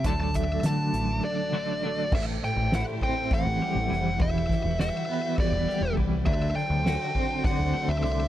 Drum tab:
CC |-------|x------|-------|-------|
RD |-------|-xxxxxx|xxxxxxx|xxxxxxx|
HH |xxxx---|-------|-------|-------|
SD |--o----|-oo-o-o|-oo-oo-|-oo-o-o|
BD |oo-----|o--oo--|oo--o-o|o--oo--|